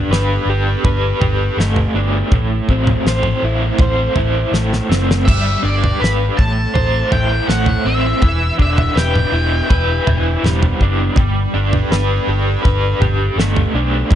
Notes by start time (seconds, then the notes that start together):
Already playing: G3 B3 D4 G4 A4 B4
0.08 G1 B4
0.13 snare
0.46 G1
0.50 G4
0.84 G1 B4, kick, floor tom
1.20 G1 G4, floor tom, mid tom
1.57 G1 A3, snare
1.76 floor tom
1.94 G1 D4
2.31 A1 A2 A3 C4 E4 C5, kick, floor tom
2.68 A1 C4, kick
2.87 floor tom, mid tom
3.04 A1 C5, snare
3.23 mid tom
3.42 A1 E4
3.79 A1 C5, kick, floor tom
4.16 A1 E4, floor tom, mid tom
4.52 A1 A3, snare
4.73 snare
4.89 F#1 C4, snare
5.11 snare
5.25 G1 G3 B3 D4 G4 B4 E5, kick, floor tom, crash
5.63 G1 D4 D5
5.84 floor tom
6.00 G#1 B4 B5
6.04 snare
6.37 A1 A2 A3 C4 E4 A4 C5 A5, kick
6.74 A1 C5, floor tom
7.11 A1 E4 G5, floor tom, mid tom
7.48 A1 A3 F#5, snare
7.66 floor tom
7.85 A1 C4 E5
8.22 E1 E3 B3 D4 G4 B4, kick, floor tom
8.59 E1 D4 E5, kick
8.78 floor tom, mid tom
8.96 E1 B4 G5, snare
9.16 mid tom
9.32 E1 E4
9.70 E1 B4, kick, floor tom
10.07 E1 E4, floor tom, mid tom
10.43 E1 G3, snare, mid tom
10.63 floor tom
10.81 F#1 D4, kick
11.16 G1 G3 D4 G4 A4 B4, kick, floor tom
11.54 G1 D4
11.73 floor tom
11.90 G1 B4, snare
12.27 G1 G4
12.64 G1 B4, kick, floor tom
13.00 G1 G4, floor tom, mid tom
13.36 G1 A3, snare
13.56 floor tom
13.74 B1 D4
14.11 A1 A2, kick, floor tom